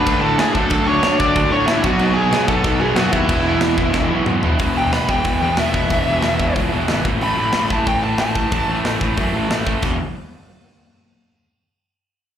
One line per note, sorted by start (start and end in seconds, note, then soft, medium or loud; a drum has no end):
0.00 0.54 D3 medium
0.00 0.57 F#3 loud
0.00 0.54 A3 loud
0.00 0.55 D4 loud
0.00 0.21 B4 medium
0.00 0.20 B5 loud
0.06 0.20 D2 loud
0.06 0.22 D3 medium
0.06 0.22 A3 loud
0.06 0.22 D4 loud
0.06 kick loud
0.06 crash medium
0.21 0.36 A2 loud
0.21 0.39 D3 medium
0.21 0.39 A3 medium
0.21 0.38 D4 medium
0.21 0.38 A4 medium
0.21 0.39 A5 loud
0.38 0.52 A2 loud
0.38 0.55 D3 medium
0.38 0.55 A3 medium
0.38 0.56 D4 medium
0.38 0.55 G#4 medium
0.38 0.54 G#5 loud
0.38 snare loud
0.38 crash medium
0.54 0.69 D2 medium
0.54 0.72 D3 loud
0.54 0.73 F#3 medium
0.54 0.72 A3 loud
0.54 0.71 A3 medium
0.54 0.71 D4 medium
0.54 0.71 D4 loud
0.54 0.86 A4 medium
0.54 0.87 A5 loud
0.54 kick medium
0.59 0.71 D3 medium
0.70 0.98 D2 loud
0.70 1.84 D3 medium
0.70 0.86 D3 medium
0.70 1.84 F#3 loud
0.70 0.87 A3 loud
0.70 1.85 A3 loud
0.70 0.87 D4 loud
0.70 kick loud
0.70 crash medium
0.75 1.85 D4 loud
0.87 1.03 D3 medium
0.87 1.03 A3 medium
0.87 1.03 D4 loud
0.87 1.19 C#5 loud
0.87 1.17 C#6 loud
1.03 1.17 D2 medium
1.03 1.19 D3 medium
1.03 1.19 A3 medium
1.03 1.20 D4 loud
1.03 snare loud
1.03 crash medium
1.19 1.33 D2 loud
1.19 1.35 D3 medium
1.19 1.35 A3 medium
1.19 1.34 D4 medium
1.19 1.50 D5 medium
1.19 1.52 D6 loud
1.19 kick loud
1.35 1.50 D2 loud
1.35 1.51 D3 medium
1.35 1.51 A3 loud
1.35 1.51 D4 loud
1.35 kick loud
1.35 crash medium
1.51 1.65 A2 loud
1.51 1.68 D3 medium
1.51 1.68 A3 medium
1.51 1.67 D4 medium
1.51 1.66 C#5 medium
1.51 1.69 C#6 loud
1.66 1.81 A1 medium
1.66 1.84 D3 medium
1.66 1.84 A3 medium
1.66 1.83 D4 medium
1.66 1.83 E4 medium
1.66 1.84 E5 loud
1.66 snare loud
1.66 crash medium
1.83 1.98 B1 medium
1.83 2.00 B2 loud
1.83 2.95 B2 medium
1.83 2.00 F#3 loud
1.83 2.96 F#3 medium
1.83 2.00 B3 loud
1.83 2.99 B3 medium
1.83 2.14 F#4 medium
1.83 2.14 F#5 loud
1.83 kick loud
1.87 2.98 D#4 loud
1.98 2.27 B1 loud
1.98 2.15 B2 medium
1.98 2.16 F#3 loud
1.98 2.17 B3 loud
1.98 crash medium
2.14 2.33 B2 medium
2.14 2.32 F#3 loud
2.14 2.32 B3 loud
2.14 2.46 G#4 medium
2.14 2.48 G#5 loud
2.31 2.46 B1 medium
2.31 2.46 B2 medium
2.31 2.47 F#3 medium
2.31 2.48 B3 loud
2.31 snare loud
2.31 crash medium
2.47 2.62 B1 loud
2.47 2.63 B2 medium
2.47 2.63 F#3 loud
2.47 2.63 B3 loud
2.47 2.79 A4 medium
2.47 2.79 A5 loud
2.47 kick medium
2.64 2.79 B1 loud
2.64 2.78 B2 medium
2.64 2.79 F#3 loud
2.64 2.80 B3 loud
2.64 kick loud
2.64 crash medium
2.79 2.95 F#2 loud
2.79 2.95 B2 medium
2.79 2.95 F#3 medium
2.79 2.95 B3 loud
2.79 2.97 G#4 medium
2.79 2.96 G#5 medium
2.95 3.10 F#2 loud
2.95 3.12 B2 medium
2.95 3.13 F#3 medium
2.95 3.13 B3 loud
2.95 3.12 F#4 medium
2.95 3.13 F#5 medium
2.95 snare loud
2.95 crash medium
2.99 3.30 B3 medium
2.99 3.14 D#4 medium
3.12 3.27 D#2 medium
3.12 3.28 B2 medium
3.12 3.29 F#3 medium
3.12 6.64 B3 loud
3.12 4.23 E4 medium
3.12 4.23 E5 medium
3.12 kick medium
3.29 3.57 E1 loud
3.29 3.45 E2 loud
3.29 3.45 B2 loud
3.29 4.42 E3 loud
3.29 3.44 E3 loud
3.29 4.43 G#3 loud
3.29 4.43 B3 loud
3.29 4.43 E4 loud
3.29 kick loud
3.29 crash medium
3.45 3.60 E2 medium
3.45 3.60 B2 medium
3.45 3.61 E3 loud
3.61 3.76 E1 loud
3.61 3.77 E2 medium
3.61 3.76 B2 loud
3.61 3.76 E3 loud
3.61 snare loud
3.61 crash medium
3.77 3.92 E1 loud
3.77 3.92 E2 medium
3.77 3.92 B2 medium
3.77 3.93 E3 medium
3.77 kick medium
3.93 4.08 E1 loud
3.93 4.09 E2 loud
3.93 4.09 B2 loud
3.93 4.09 E3 loud
3.93 kick loud
3.93 snare medium
4.10 4.25 B1 loud
4.10 4.26 E2 medium
4.10 4.27 B2 medium
4.10 4.27 E3 loud
4.26 4.41 B1 medium
4.26 4.44 E2 medium
4.26 4.44 B2 medium
4.26 4.43 E3 loud
4.26 mid tom loud
4.43 4.58 E1 medium
4.43 4.58 E2 medium
4.43 4.58 B2 loud
4.43 4.58 E3 loud
4.43 4.59 E3 medium
4.43 4.60 G#3 medium
4.43 4.59 B3 medium
4.43 4.59 E4 medium
4.43 floor tom loud
4.59 4.72 E1 medium
4.59 4.76 E2 medium
4.59 4.75 B2 medium
4.59 4.75 E3 loud
4.59 5.44 E3 medium
4.59 5.41 G#3 medium
4.59 5.41 B3 medium
4.59 5.42 E4 loud
4.59 kick loud
4.59 open hi-hat medium
4.75 4.88 E1 loud
4.75 4.92 E2 medium
4.75 4.91 B2 medium
4.75 4.92 E3 medium
4.75 4.93 G5 loud
4.92 5.05 E1 medium
4.92 5.08 E2 medium
4.92 5.08 B2 loud
4.92 5.08 E3 loud
4.92 5.08 B5 medium
4.92 snare loud
4.92 open hi-hat medium
5.08 5.21 E1 loud
5.08 5.23 E2 medium
5.08 5.23 B2 medium
5.08 5.24 E3 medium
5.08 5.41 G5 medium
5.08 kick medium
5.24 5.41 E2 medium
5.24 5.37 E2 loud
5.24 5.41 B2 medium
5.24 5.41 E3 loud
5.24 kick loud
5.24 open hi-hat medium
5.41 5.54 E2 medium
5.41 5.57 E2 medium
5.41 5.57 B2 medium
5.41 5.59 E3 medium
5.41 5.58 E3 medium
5.41 5.58 G#3 medium
5.41 5.58 B3 medium
5.41 5.60 E4 medium
5.41 5.58 G5 medium
5.57 5.83 E1 medium
5.57 5.75 E2 medium
5.57 5.75 B2 medium
5.57 5.89 E3 medium
5.57 5.75 E3 medium
5.57 5.90 G#3 medium
5.57 5.90 B3 medium
5.57 5.92 E4 medium
5.57 6.54 E5 loud
5.57 snare loud
5.57 open hi-hat medium
5.74 5.90 E2 medium
5.74 5.90 B2 medium
5.74 5.92 E3 loud
5.74 kick medium
5.90 6.03 E1 loud
5.90 6.06 E2 medium
5.90 6.05 B2 medium
5.90 6.71 E3 medium
5.90 6.06 E3 loud
5.90 6.71 G#3 medium
5.90 6.72 B3 medium
5.90 6.71 E4 loud
5.90 kick loud
5.90 open hi-hat medium
6.06 6.20 E1 medium
6.06 6.22 E2 medium
6.06 6.23 B2 medium
6.06 6.24 E3 medium
6.22 6.36 E1 medium
6.22 6.40 E2 medium
6.22 6.39 B2 medium
6.22 6.40 E3 medium
6.22 snare loud
6.22 open hi-hat medium
6.39 6.52 E1 medium
6.39 6.55 E2 medium
6.39 6.55 B2 medium
6.39 6.57 E3 medium
6.39 kick medium
6.56 6.68 C#2 medium
6.56 6.74 E2 medium
6.56 6.74 B2 loud
6.56 6.74 E3 loud
6.56 kick medium
6.56 open hi-hat medium
6.72 6.85 E1 loud
6.72 6.89 E2 medium
6.72 6.88 B2 medium
6.72 6.90 E3 medium
6.72 6.87 E3 medium
6.72 6.88 G#3 medium
6.72 6.88 B3 medium
6.72 6.88 E4 medium
6.88 7.01 G#1 medium
6.88 7.05 E2 medium
6.88 7.04 B2 medium
6.88 7.04 E3 medium
6.88 7.05 E3 medium
6.88 7.05 G#3 medium
6.88 7.05 B3 medium
6.88 7.05 E4 medium
6.88 snare loud
6.88 open hi-hat medium
7.05 7.17 A1 medium
7.05 7.22 A2 loud
7.05 7.21 E3 loud
7.05 7.21 A3 loud
7.05 kick loud
7.21 7.34 A1 loud
7.21 7.38 A2 medium
7.21 7.38 E3 loud
7.21 7.38 A3 loud
7.21 7.70 B5 loud
7.21 open hi-hat medium
7.37 7.50 A1 loud
7.37 7.55 A2 medium
7.37 7.54 E3 medium
7.37 7.54 A3 medium
7.53 7.67 A1 medium
7.53 7.70 A2 medium
7.53 7.70 E3 medium
7.53 7.71 A3 loud
7.53 snare loud
7.53 open hi-hat medium
7.70 7.83 A1 medium
7.70 7.86 A2 medium
7.70 7.87 E3 medium
7.70 7.85 A3 medium
7.70 7.87 A5 medium
7.70 kick medium
7.86 7.99 A2 medium
7.86 8.02 A2 medium
7.86 8.04 E3 medium
7.86 8.03 A3 loud
7.86 8.03 G5 medium
7.86 kick loud
7.86 open hi-hat medium
8.02 8.15 A2 loud
8.02 8.19 A2 medium
8.02 8.20 E3 medium
8.02 8.18 A3 loud
8.02 8.19 A5 medium
8.18 8.44 A1 medium
8.18 8.35 A2 medium
8.18 8.37 E3 medium
8.18 8.36 A3 medium
8.18 8.84 A5 loud
8.18 snare loud
8.18 open hi-hat medium
8.35 8.53 A2 medium
8.35 8.52 E3 medium
8.35 8.52 A3 medium
8.35 kick medium
8.52 8.64 A1 loud
8.52 8.67 A2 medium
8.52 8.68 E3 medium
8.52 8.68 A3 loud
8.52 kick loud
8.52 open hi-hat medium
8.68 8.81 A1 medium
8.68 8.83 A2 medium
8.68 8.83 E3 medium
8.68 8.83 A3 medium
8.84 8.97 A1 medium
8.84 8.99 A2 medium
8.84 8.99 E3 medium
8.84 9.00 A3 medium
8.84 snare loud
8.84 open hi-hat medium
9.00 9.14 A1 medium
9.00 9.17 A2 medium
9.00 9.16 E3 medium
9.00 9.15 A3 medium
9.00 kick medium
9.17 9.30 F#2 medium
9.17 9.33 A2 medium
9.17 9.33 E3 medium
9.17 9.34 A3 medium
9.17 kick loud
9.17 open hi-hat medium
9.33 9.46 A1 medium
9.33 9.49 A2 medium
9.33 9.49 E3 medium
9.33 9.49 A3 medium
9.49 9.74 A1 medium
9.49 9.65 A2 medium
9.49 9.66 E3 medium
9.49 9.66 A3 medium
9.49 snare loud
9.49 open hi-hat medium
9.66 9.82 A2 medium
9.66 9.82 E3 medium
9.66 9.82 A3 loud
9.66 kick medium
9.82 9.98 E1 medium
9.82 9.96 E2 loud
9.82 9.96 B2 medium
9.82 9.97 E3 loud
9.82 kick loud
9.82 crash medium